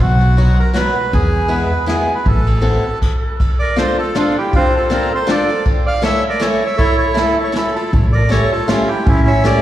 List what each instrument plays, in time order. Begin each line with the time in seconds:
0.00 upright bass B1, bandoneon F#4
0.21 ride
0.37 steel-string acoustic guitar F#3 B3 D#4 F#4, ride
0.59 bandoneon A#4
0.73 steel-string acoustic guitar F#3 B3 D#4 F#4, bandoneon B4, snare, ride
1.13 upright bass E2, bandoneon G#4, kick, ride
1.48 steel-string acoustic guitar G#3 B3 E4 G#4, bandoneon B4, ride
1.86 steel-string acoustic guitar G#3 B3 E4 G#4, bandoneon G#4, snare, ride
2.15 bandoneon B4
2.25 upright bass A1, bandoneon A4, kick, ride
2.47 ride
2.62 steel-string acoustic guitar B3 C4 E4 A4, ride
3.02 kick, crash
3.40 kick, ride
3.59 clarinet A#4, bandoneon D5
3.76 steel-string acoustic guitar C4 D4 F4 A4, clarinet A4, bandoneon C5, snare, ride
3.99 clarinet F4, bandoneon A4
4.15 steel-string acoustic guitar C4 D4 F4 A4, clarinet D4, bandoneon F4, snare, ride
4.38 clarinet E4, bandoneon G4
4.53 bandoneon C4 F4, clarinet D4, kick, ride
4.74 clarinet F4, bandoneon A4
4.90 steel-string acoustic guitar C4 D4 F4 A4, clarinet F4, bandoneon A#4, snare, ride
5.11 clarinet A4, bandoneon C5
5.27 steel-string acoustic guitar C4 D4 F4 A4, clarinet A4, snare, ride
5.31 bandoneon D5
5.49 ride
5.65 kick, ride
5.86 clarinet D5, bandoneon F5
6.02 steel-string acoustic guitar A3 C#4 E4 A4, clarinet C#5, bandoneon E5, snare, ride
6.29 clarinet A#4, bandoneon D5
6.40 steel-string acoustic guitar A3 C#4 E4 A4, clarinet A4, bandoneon C#5, snare, ride
6.66 clarinet C#5, bandoneon E5
6.77 bandoneon E4 C#5, clarinet A4, kick, ride
6.98 clarinet A4, bandoneon C#5
7.14 steel-string acoustic guitar A3 C#4 E4 A4, clarinet E4, bandoneon A4, snare, ride
7.41 clarinet A4, bandoneon C#5
7.52 steel-string acoustic guitar A3 C#4 E4 A4, clarinet E4, snare, ride
7.57 bandoneon A4
7.76 clarinet F4, bandoneon A4, ride
7.93 upright bass A1, kick, ride
8.12 clarinet A#4, bandoneon D5
8.29 steel-string acoustic guitar A3 C#4 E4 G4, clarinet A4, bandoneon C#5, snare, ride
8.52 clarinet F4, bandoneon A4
8.67 steel-string acoustic guitar A3 C#4 E4 G4, clarinet C#4, bandoneon F4, snare, ride
8.88 clarinet E4, bandoneon G4
9.05 upright bass A1, clarinet C#4, bandoneon C#4 E4, kick, ride
9.28 clarinet C#5, bandoneon E5
9.44 steel-string acoustic guitar A3 C#4 E4 G4, clarinet A4, bandoneon D5, snare, ride